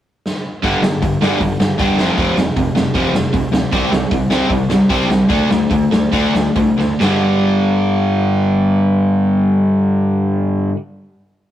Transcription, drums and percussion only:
0.26 snare
0.64 kick, open hi-hat
0.83 snare
1.02 kick, open hi-hat
1.22 snare
1.41 kick, open hi-hat
1.60 snare
1.79 kick, open hi-hat
1.99 snare
2.18 kick, open hi-hat
2.37 snare
2.57 kick, open hi-hat
2.76 snare
2.95 kick, open hi-hat
3.15 snare
3.34 kick, open hi-hat
3.53 snare
3.73 kick, open hi-hat
3.92 snare
4.11 kick, open hi-hat
4.30 snare
4.50 kick, open hi-hat
4.70 snare
4.90 kick, open hi-hat
5.10 snare
5.30 kick, open hi-hat
5.51 snare
5.71 kick, open hi-hat
5.92 snare
6.13 kick, open hi-hat
6.35 snare
6.56 kick, open hi-hat
6.79 snare
7.01 snare, splash

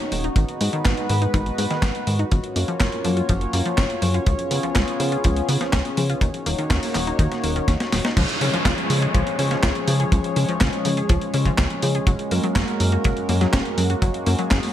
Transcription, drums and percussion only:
0.12 open hi-hat
0.24 closed hi-hat
0.36 kick, closed hi-hat
0.49 closed hi-hat
0.61 open hi-hat
0.73 closed hi-hat
0.85 kick, snare, clap, closed hi-hat
0.97 closed hi-hat
1.09 open hi-hat
1.22 closed hi-hat
1.34 kick, closed hi-hat
1.46 closed hi-hat
1.58 open hi-hat
1.71 snare, closed hi-hat
1.82 kick, snare, clap, closed hi-hat
1.95 closed hi-hat
2.07 open hi-hat
2.19 closed hi-hat
2.32 kick, closed hi-hat
2.44 closed hi-hat
2.56 open hi-hat
2.68 closed hi-hat
2.80 kick, snare, clap, closed hi-hat
2.92 closed hi-hat
3.05 open hi-hat
3.17 closed hi-hat
3.29 kick, closed hi-hat
3.41 closed hi-hat
3.53 open hi-hat
3.66 closed hi-hat
3.78 kick, snare, clap, closed hi-hat
3.90 closed hi-hat
4.02 open hi-hat
4.14 closed hi-hat
4.26 kick, closed hi-hat
4.39 closed hi-hat
4.51 open hi-hat
4.63 closed hi-hat
4.75 kick, snare, clap, closed hi-hat
4.88 closed hi-hat
5.00 open hi-hat
5.12 closed hi-hat
5.24 kick, closed hi-hat
5.36 closed hi-hat
5.49 open hi-hat
5.61 snare, closed hi-hat
5.73 kick, snare, clap, closed hi-hat
5.85 closed hi-hat
5.97 open hi-hat
6.10 closed hi-hat
6.21 kick, closed hi-hat
6.34 closed hi-hat
6.46 open hi-hat
6.58 closed hi-hat
6.70 kick, snare, clap, closed hi-hat
6.83 open hi-hat
6.95 clap, open hi-hat
7.07 closed hi-hat
7.19 kick, closed hi-hat
7.32 snare, closed hi-hat
7.44 open hi-hat
7.56 closed hi-hat
7.68 kick, snare, closed hi-hat
7.80 snare, closed hi-hat
7.92 snare, open hi-hat
8.05 snare, closed hi-hat
8.17 kick, closed hi-hat, crash
8.29 closed hi-hat
8.41 open hi-hat
8.54 closed hi-hat
8.65 kick, snare, clap, closed hi-hat
8.78 closed hi-hat
8.90 open hi-hat
9.02 closed hi-hat
9.15 kick, closed hi-hat
9.27 closed hi-hat
9.39 open hi-hat
9.51 snare, closed hi-hat
9.63 kick, snare, clap, closed hi-hat
9.75 closed hi-hat
9.88 open hi-hat
10.00 closed hi-hat
10.12 kick, closed hi-hat
10.24 closed hi-hat
10.36 open hi-hat
10.49 closed hi-hat
10.61 kick, snare, clap, closed hi-hat
10.73 closed hi-hat
10.85 open hi-hat
10.97 closed hi-hat
11.09 kick, closed hi-hat
11.22 closed hi-hat
11.34 open hi-hat
11.45 kick, closed hi-hat
11.58 kick, snare, clap, closed hi-hat
11.70 closed hi-hat
11.82 open hi-hat
11.95 closed hi-hat
12.07 kick, closed hi-hat
12.19 closed hi-hat
12.31 open hi-hat
12.43 closed hi-hat
12.56 kick, snare, clap, closed hi-hat
12.68 closed hi-hat
12.80 open hi-hat
12.92 closed hi-hat
13.04 kick, closed hi-hat
13.17 closed hi-hat
13.29 open hi-hat
13.41 snare, closed hi-hat
13.53 kick, snare, clap, closed hi-hat
13.65 closed hi-hat
13.78 open hi-hat
13.90 closed hi-hat
14.02 kick, closed hi-hat
14.14 closed hi-hat
14.26 open hi-hat
14.39 closed hi-hat
14.51 kick, snare, clap, closed hi-hat
14.63 open hi-hat

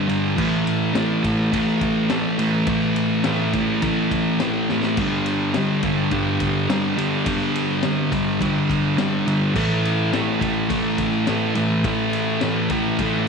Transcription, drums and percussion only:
0.09 ride
0.38 kick, crash
0.67 ride
0.95 snare, ride
1.24 kick, ride
1.53 kick, ride
1.81 kick, ride
2.09 snare, ride
2.39 ride
2.67 kick, ride
2.96 ride
3.24 snare, ride
3.53 kick, ride
3.82 kick, ride
4.11 kick, ride
4.40 snare, ride
4.69 snare
4.83 snare
4.97 kick, crash, ride
5.26 ride
5.54 snare, ride
5.83 kick, ride
6.11 kick, ride
6.40 kick, ride
6.70 snare, ride
6.98 ride
7.26 kick, ride
7.55 ride
7.83 snare, ride
8.12 kick, ride
8.41 kick, ride
8.70 kick, ride
8.98 snare, ride
9.28 ride
9.56 kick, crash
9.85 ride
10.13 snare, ride
10.41 kick, ride
10.70 kick, ride
10.98 kick, ride
11.27 snare, ride
11.55 ride
11.84 kick, ride
12.13 ride
12.41 snare, ride
12.70 kick, ride
12.99 kick, ride

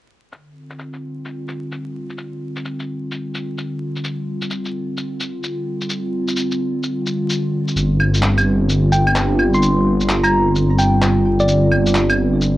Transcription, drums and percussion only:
0.32 shaker
0.70 shaker
0.79 shaker
0.93 shaker
1.25 shaker
1.48 shaker
1.72 shaker
2.10 shaker
2.18 shaker
2.56 shaker
2.65 shaker
2.79 shaker
3.11 shaker
3.34 shaker
3.58 shaker
3.96 shaker
4.04 shaker
4.42 shaker
4.50 shaker
4.65 shaker
4.97 shaker
5.20 shaker
5.43 shaker
5.81 shaker
5.90 shaker
6.28 shaker
6.36 shaker
6.51 shaker
6.83 shaker
7.06 shaker
7.30 shaker
7.68 shaker
7.77 shaker
8.00 claves
8.14 shaker
8.23 clap, shaker
8.38 claves, shaker
8.69 shaker
8.92 shaker
9.07 claves
9.16 clap, shaker
9.39 claves
9.54 shaker
9.62 shaker
10.00 shaker
10.09 clap, shaker
10.24 claves, shaker
10.55 shaker
10.79 shaker
11.02 clap, shaker
11.40 shaker
11.48 shaker
11.72 claves
11.86 shaker
11.95 clap, shaker
12.10 claves, shaker
12.41 shaker

